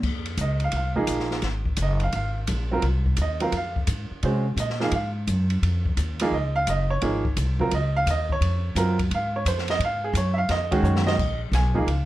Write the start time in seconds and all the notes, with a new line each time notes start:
0.03 F2, kick, crash
0.26 ride
0.37 C#2 D#5, hi-hat pedal, ride
0.60 ride
0.64 F5
0.72 C2, ride
0.76 F5
0.95 F3 A#3 D#4 G#4, kick
1.07 A#1, hi-hat pedal, ride
1.20 snare
1.31 snare
1.42 G#1, snare, ride
1.65 kick
1.77 F#1, hi-hat pedal, ride
1.82 D#5
2.00 F5, ride
2.13 G#1 F5, ride
2.47 A#1, hi-hat pedal, ride
2.71 F#3 C4 F4 A#4
2.82 C2, ride
3.06 kick
3.17 D#2, hi-hat pedal, ride
3.22 D#5
3.40 F#3 C4 F4 A#4 F5, ride
3.52 F2, ride
3.57 F5
3.76 kick
3.87 G#2, hi-hat pedal, ride
4.11 muted upright bass stroke
4.23 C3 G#3 C#4 F#4 C5, ride
4.57 A#2 D#5, hi-hat pedal, ride
4.70 snare
4.80 F3 A#3 D#4 G#4 F5, snare
4.91 G#2 F5, ride
5.27 F#2, hi-hat pedal, ride
5.50 ride
5.62 F2, ride
5.86 kick
5.97 D#2, hi-hat pedal, ride
6.19 F3 A#3 D#4 G#4, ride
6.32 C#2 D#5
6.56 F5
6.67 F#1 D#5, hi-hat pedal, ride
6.90 C#5
7.02 G#1 F3 A#3 D#4 G#4, ride
7.25 kick
7.37 C2, hi-hat pedal, ride
7.59 F#3 C4 F4 A#4, kick
7.71 C#2 D#5, ride
7.96 F5
8.06 D#2, hi-hat pedal, ride
8.10 D#5
8.30 C#5, kick
8.41 F2, ride
8.75 F#2 F#3 C4 F4 A#4, hi-hat pedal, ride
8.99 kick, ride
9.10 G#2, ride
9.15 F5
9.36 C#5
9.45 F2 C5, hi-hat pedal, ride
9.58 snare
9.68 D#5, snare, ride
9.79 G#2, ride
9.85 F5
10.04 G#4
10.13 F#2 C#5, hi-hat pedal, ride
10.34 E5
10.38 F5
10.49 F2 D#5, snare, ride
10.71 D#3 G#3 C#4 F#4 G#4, kick, ride
10.83 F#2 C#5, hi-hat pedal
10.96 snare
11.07 D#5, snare
11.18 A#1, kick, crash
11.52 B1 G#5, snare, hi-hat pedal, ride
11.74 F3 A#3 D#4 G#4 F5, kick
11.86 C#2, ride